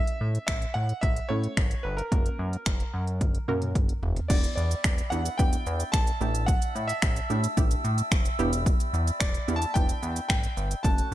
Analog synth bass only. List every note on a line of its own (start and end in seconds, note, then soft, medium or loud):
0.21 0.39 A2 loud
0.48 0.66 A1 loud
0.75 0.93 A2 medium
1.03 1.21 A1 loud
1.30 1.48 A2 medium
1.57 1.75 G#1 medium
1.85 2.02 G1 medium
2.12 2.29 F#1 loud
2.39 2.57 F#2 medium
2.67 2.84 F#1 loud
2.94 3.23 F#2 loud
3.21 3.39 F#1 loud
3.48 3.77 F#2 loud
3.75 3.93 F#1 medium
4.03 4.20 F1 medium
4.30 4.48 E1 loud
4.57 4.75 E2 loud
4.85 5.02 E1 loud
5.12 5.29 E2 loud
5.39 5.57 E1 loud
5.66 5.84 E2 loud
5.94 6.11 A#1 medium
6.21 6.56 A1 medium
6.75 6.93 A2 medium
7.03 7.20 A1 loud
7.30 7.48 A2 medium
7.57 7.75 A1 loud
7.84 8.02 A2 loud
8.12 8.29 F1 medium
8.39 8.74 E1 loud
8.94 9.11 E2 loud
9.21 9.39 E1 loud
9.48 9.66 E2 loud
9.76 9.93 E1 loud
10.03 10.20 E2 loud
10.30 10.48 G#1 medium
10.57 10.75 G1 medium
10.84 11.02 F#1 loud